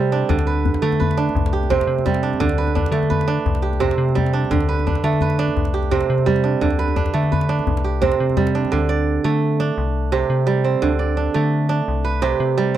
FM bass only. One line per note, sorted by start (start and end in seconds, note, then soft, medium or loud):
0.00 0.24 C3 medium
0.30 0.76 D2 loud
0.82 1.29 D3 loud
1.35 1.82 C2 medium
1.87 2.34 C3 medium
2.40 2.87 D2 loud
2.92 3.39 D3 loud
3.46 3.93 C2 medium
3.98 4.45 C3 medium
4.51 4.98 D2 loud
5.04 5.51 D3 loud
5.56 6.03 C2 medium
6.10 6.56 C3 medium
6.62 7.09 D2 medium
7.15 7.61 D3 medium
7.67 8.14 C2 medium
8.20 8.67 C3 medium
8.73 9.20 D2 loud
9.25 9.72 D3 loud
9.78 10.24 C2 medium
10.30 10.77 C3 medium
10.83 11.30 D2 loud
11.36 11.82 D3 loud
11.88 12.35 C2 medium
12.40 12.78 C3 loud